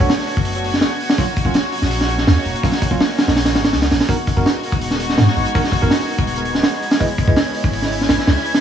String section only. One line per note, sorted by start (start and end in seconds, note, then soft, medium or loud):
0.00 1.16 A3 medium
0.00 1.14 B3 medium
0.00 1.16 D4 medium
0.00 4.05 F#4 medium
1.19 4.07 A#3 medium
1.19 4.07 C#4 medium
1.19 4.07 D#4 medium
4.10 8.61 G#3 medium
4.10 8.61 B3 medium
4.10 6.98 D#4 medium
4.10 6.97 F#4 medium
7.01 8.61 C#4 medium
7.01 8.61 E4 loud